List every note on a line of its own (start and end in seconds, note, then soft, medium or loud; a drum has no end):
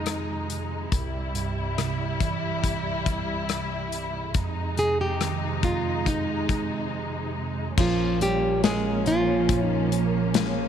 0.00 0.88 F2 medium
0.00 0.89 F2 medium
0.00 4.30 C3 soft
0.00 0.94 D#3 soft
0.00 0.45 G#3 soft
0.00 0.89 G#3 medium
0.00 0.45 D#4 medium
0.00 0.88 D#4 medium
0.06 cross-stick medium
0.06 closed hi-hat medium
0.50 closed hi-hat medium
0.91 4.31 C2 medium
0.91 4.31 G3 medium
0.91 4.32 E4 medium
0.91 kick medium
0.91 closed hi-hat medium
1.35 3.02 G2 soft
1.35 closed hi-hat medium
1.78 3.45 C3 soft
1.78 cross-stick medium
1.78 closed hi-hat medium
2.20 3.88 E3 soft
2.20 kick medium
2.20 closed hi-hat medium
2.64 kick medium
2.64 closed hi-hat medium
3.06 kick medium
3.06 closed hi-hat medium
3.49 cross-stick medium
3.49 closed hi-hat medium
3.92 closed hi-hat medium
4.34 7.74 F2 medium
4.34 7.74 C3 medium
4.34 7.74 G#3 medium
4.34 7.74 D#4 medium
4.34 kick medium
4.34 closed hi-hat medium
4.77 6.45 C3 soft
4.77 5.00 G#4 medium
4.77 closed hi-hat medium
5.01 5.64 G4 medium
5.21 6.88 D#3 soft
5.21 cross-stick medium
5.21 closed hi-hat medium
5.63 7.31 G#3 soft
5.63 6.08 F4 medium
5.63 kick medium
5.63 closed hi-hat medium
6.06 7.31 D#4 medium
6.06 kick medium
6.06 closed hi-hat medium
6.49 kick medium
6.49 closed hi-hat medium
7.77 10.68 A#1 medium
7.77 10.68 A#2 medium
7.77 8.63 A#2 medium
7.77 10.68 A#2 medium
7.77 10.68 F3 medium
7.77 8.19 F3 medium
7.77 10.68 A#3 medium
7.77 10.68 C#4 medium
7.77 8.65 F4 medium
7.77 8.22 F4 medium
7.77 kick loud
7.77 crash medium
8.20 9.05 F3 soft
8.20 8.61 G3 medium
8.20 8.64 G4 medium
8.20 closed hi-hat medium
8.64 9.48 A#2 medium
8.64 9.04 G#3 medium
8.64 10.35 G#3 medium
8.64 10.34 C#4 medium
8.64 10.36 F4 medium
8.64 9.07 G#4 medium
8.64 snare loud
8.64 closed hi-hat medium
9.06 9.91 F3 soft
9.06 9.89 F3 medium
9.06 9.66 F4 medium
9.06 closed hi-hat medium
9.49 10.34 A#2 medium
9.49 kick medium
9.49 closed hi-hat medium
9.66 9.88 D#4 medium
9.92 10.68 F3 medium
9.92 closed hi-hat medium
10.34 10.68 A#2 soft
10.34 10.68 G#3 medium
10.34 10.68 C#4 medium
10.34 10.68 F4 medium
10.34 snare loud
10.34 closed hi-hat medium